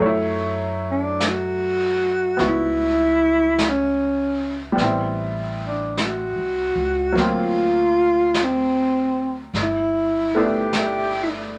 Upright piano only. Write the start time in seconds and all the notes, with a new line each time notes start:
Already playing: F#3
0.00 A3 C#5
0.06 E4
2.37 B3 E4 F#4
4.72 G3 B3
4.80 C4 E4
7.12 F#3 A#3
7.20 C4 F4
10.35 A3 B3 D4
10.39 E4